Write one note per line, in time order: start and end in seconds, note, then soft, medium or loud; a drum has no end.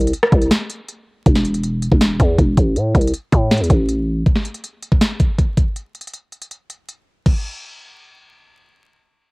0.00 0.13 C2 loud
0.00 closed hi-hat medium
0.07 closed hi-hat medium
0.14 closed hi-hat medium
0.23 cross-stick loud
0.32 0.50 C2 loud
0.32 kick medium
0.32 closed hi-hat soft
0.42 closed hi-hat medium
0.51 snare loud
0.51 closed hi-hat medium
0.70 closed hi-hat medium
0.89 closed hi-hat medium
1.26 1.89 E1 loud
1.26 kick loud
1.26 closed hi-hat medium
1.35 snare medium
1.45 closed hi-hat medium
1.54 closed hi-hat medium
1.63 closed hi-hat medium
1.82 closed hi-hat medium
1.92 2.19 E1 medium
1.92 kick medium
2.01 snare loud
2.01 closed hi-hat medium
2.20 2.38 E2 loud
2.20 kick loud
2.20 closed hi-hat medium
2.38 2.56 E1 loud
2.38 kick medium
2.38 closed hi-hat medium
2.57 2.78 A1 loud
2.57 kick medium
2.57 closed hi-hat medium
2.76 2.94 A2 loud
2.76 closed hi-hat medium
2.95 3.13 C2 loud
2.95 kick medium
2.95 closed hi-hat soft
3.01 closed hi-hat medium
3.07 closed hi-hat medium
3.14 closed hi-hat medium
3.32 3.62 A2 loud
3.32 kick medium
3.32 closed hi-hat medium
3.51 snare loud
3.51 closed hi-hat soft
3.57 3.69 E2 loud
3.57 closed hi-hat medium
3.64 closed hi-hat medium
3.70 4.24 A1 loud
3.70 kick medium
3.70 closed hi-hat medium
3.88 closed hi-hat medium
4.26 kick loud
4.26 closed hi-hat medium
4.35 snare medium
4.45 closed hi-hat medium
4.54 closed hi-hat medium
4.64 closed hi-hat medium
4.82 closed hi-hat medium
4.92 kick medium
5.01 snare loud
5.01 closed hi-hat medium
5.20 kick medium
5.20 closed hi-hat medium
5.38 kick medium
5.38 closed hi-hat medium
5.57 kick medium
5.57 closed hi-hat medium
5.76 closed hi-hat medium
5.95 closed hi-hat soft
6.01 closed hi-hat medium
6.07 closed hi-hat medium
6.14 closed hi-hat medium
6.32 closed hi-hat soft
6.42 closed hi-hat medium
6.51 closed hi-hat medium
6.70 closed hi-hat medium
6.89 closed hi-hat medium
7.26 kick loud
7.26 crash medium